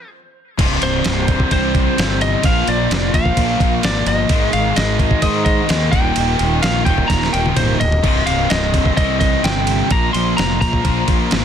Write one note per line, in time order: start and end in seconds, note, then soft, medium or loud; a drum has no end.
0.58 0.77 C1 medium
0.58 1.27 C2 loud
0.58 1.28 G2 medium
0.58 1.27 C3 loud
0.58 2.42 C4 medium
0.58 2.42 G4 medium
0.58 2.42 D5 medium
0.58 kick loud
0.58 crash loud
0.58 ride loud
0.82 1.01 C1 medium
0.82 1.51 C5 medium
0.82 ride medium
1.04 1.42 C1 loud
1.04 snare loud
1.04 ride medium
1.28 1.97 C2 medium
1.28 1.97 G2 medium
1.28 1.96 C3 medium
1.28 kick medium
1.28 ride medium
1.40 kick medium
1.51 2.42 C2 medium
1.51 1.88 C2 medium
1.51 2.44 G2 medium
1.51 2.44 C3 medium
1.51 2.21 C5 medium
1.51 kick medium
1.51 ride medium
1.75 kick medium
1.75 ride medium
1.98 2.34 G1 medium
1.98 2.43 C2 medium
1.98 2.44 G2 medium
1.98 2.44 C3 medium
1.98 snare loud
1.98 ride medium
2.21 2.45 D#5 medium
2.21 ride medium
2.43 2.62 A#1 medium
2.43 3.13 A#2 medium
2.43 3.13 F3 medium
2.43 4.28 A#3 medium
2.43 3.13 A#3 medium
2.43 4.28 F4 medium
2.43 4.28 C5 medium
2.43 2.69 F5 loud
2.43 kick loud
2.43 ride loud
2.68 2.86 A#1 loud
2.68 3.16 D5 medium
2.68 ride medium
2.91 3.09 F1 medium
2.91 snare loud
2.91 ride medium
3.14 3.32 A#1 loud
3.14 3.81 A#2 medium
3.14 3.83 F3 medium
3.14 3.82 A#3 medium
3.14 3.80 F5 medium
3.14 kick medium
3.14 ride medium
3.25 kick medium
3.36 3.55 A#1 medium
3.36 4.28 A#2 medium
3.36 4.29 F3 medium
3.36 4.30 A#3 medium
3.36 kick medium
3.36 ride loud
3.60 3.79 A#1 loud
3.60 kick loud
3.60 ride medium
3.83 4.02 G#1 medium
3.83 4.28 A#2 medium
3.83 4.29 F3 medium
3.83 4.29 A#3 medium
3.83 4.07 D5 medium
3.83 snare loud
3.83 ride medium
4.06 4.25 G1 loud
4.06 4.50 D#5 loud
4.06 ride medium
4.29 4.48 G#1 loud
4.29 4.98 G#2 medium
4.29 4.98 D#3 medium
4.29 4.98 G#3 loud
4.29 5.92 G#3 medium
4.29 8.00 D#4 medium
4.29 5.91 A#4 medium
4.29 kick loud
4.29 ride loud
4.53 4.72 G#1 medium
4.53 4.75 F5 medium
4.53 ride medium
4.76 5.13 G#1 medium
4.76 5.21 D#5 medium
4.76 snare loud
4.76 ride medium
4.99 5.67 G#2 medium
4.99 5.68 D#3 medium
4.99 5.68 G#3 medium
4.99 kick medium
4.99 ride medium
5.11 kick medium
5.22 5.91 G#2 medium
5.22 5.59 G#2 medium
5.22 5.92 D#3 medium
5.22 5.92 G#3 medium
5.22 5.44 D#5 loud
5.22 kick medium
5.22 ride medium
5.45 5.94 D#5 medium
5.45 kick medium
5.45 ride medium
5.68 5.88 D#2 loud
5.68 5.91 G#2 medium
5.68 5.92 D#3 medium
5.68 5.92 G#3 medium
5.68 snare loud
5.68 ride medium
5.91 6.11 D#1 medium
5.91 6.61 D#2 medium
5.91 6.62 A#2 medium
5.91 6.62 D#3 loud
5.91 9.87 G4 medium
5.91 8.01 A#4 loud
5.91 6.62 G5 loud
5.91 kick loud
5.91 ride medium
6.16 6.35 D#1 medium
6.16 ride medium
6.39 6.58 D#1 medium
6.39 ride medium
6.62 6.82 A#1 medium
6.62 7.31 D#2 medium
6.62 7.32 A#2 medium
6.62 7.31 D#3 medium
6.62 6.84 F5 medium
6.62 snare loud
6.62 ride medium
6.85 7.04 D#1 medium
6.85 7.80 D#2 medium
6.85 7.79 A#2 medium
6.85 7.78 D#3 medium
6.85 7.10 G5 medium
6.85 kick medium
6.85 ride medium
6.98 kick medium
7.08 7.28 D#1 medium
7.08 7.30 A#5 loud
7.08 kick medium
7.08 snare medium
7.08 ride medium
7.23 snare medium
7.32 7.52 D#1 loud
7.32 7.79 D#2 medium
7.32 7.79 A#2 medium
7.32 7.78 D#3 medium
7.32 7.57 G5 loud
7.32 ride medium
7.46 high tom medium
7.56 7.75 C1 medium
7.56 7.80 C5 medium
7.56 mid tom medium
7.56 ride loud
7.80 7.99 D1 medium
7.80 8.23 D#5 loud
7.80 floor tom loud
7.80 ride medium
7.92 floor tom medium
8.03 8.22 C1 medium
8.03 8.72 C2 medium
8.03 8.73 G2 loud
8.03 8.72 C3 loud
8.03 9.89 C4 medium
8.03 9.89 D#5 medium
8.03 kick loud
8.03 crash medium
8.26 8.46 C1 medium
8.26 8.48 F5 medium
8.26 ride medium
8.50 8.88 C1 loud
8.50 8.94 D#5 medium
8.50 snare loud
8.50 ride medium
8.73 9.42 C2 medium
8.73 9.43 G2 medium
8.73 9.42 C3 medium
8.73 kick medium
8.73 ride medium
8.86 kick medium
8.96 9.88 C2 medium
8.96 9.34 C2 medium
8.96 9.90 G2 medium
8.96 9.91 C3 medium
8.96 9.19 D#5 loud
8.96 kick loud
8.96 ride medium
9.20 9.44 D#5 medium
9.20 kick loud
9.20 ride medium
9.44 9.81 G1 medium
9.44 9.89 C2 medium
9.44 9.90 G2 medium
9.44 9.90 C3 medium
9.44 9.93 G5 loud
9.44 snare loud
9.44 ride medium
9.67 ride medium
9.91 10.09 A#1 loud
9.91 10.60 A#2 medium
9.91 10.60 F3 medium
9.91 11.45 A#3 medium
9.91 10.60 A#3 loud
9.91 11.45 F4 medium
9.91 11.45 C5 medium
9.91 10.13 A#5 loud
9.91 kick loud
9.91 ride loud
10.13 10.33 A#1 medium
10.13 10.36 C6 medium
10.13 ride medium
10.37 10.57 F1 medium
10.37 10.60 A#5 loud
10.37 snare medium
10.37 ride medium
10.61 10.80 A#1 medium
10.61 11.30 A#2 medium
10.61 11.31 F3 medium
10.61 11.30 A#3 medium
10.61 11.28 A#5 medium
10.61 kick medium
10.61 ride medium
10.73 kick medium
10.84 11.03 A#1 medium
10.84 11.45 A#2 medium
10.84 11.45 F3 medium
10.84 11.45 A#3 medium
10.84 kick medium
10.84 ride medium
11.08 11.27 A#1 loud
11.08 kick medium
11.08 ride medium
11.31 11.45 G#1 medium
11.31 11.45 A#2 medium
11.31 11.45 F3 medium
11.31 11.45 A#3 medium
11.31 snare loud
11.31 ride loud